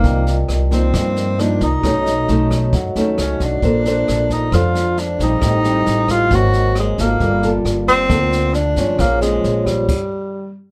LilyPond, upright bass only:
\new Staff \with { instrumentName = "Upright bass" } { \clef bass \time 4/4 \key bes \major \tempo 4 = 134 c,4 c,4 g,4. c,8 | b,,4 b,,4 fis,8 dis,8 cis,8 b,,8 | bes,,4 bes,,4 f,4. bes,,8 | a,,4 a,,4 aes,,4. aes,,8 |
g,,4 g,,4 d,4. g,,8 | bes,,4 bes,,4 r2 | }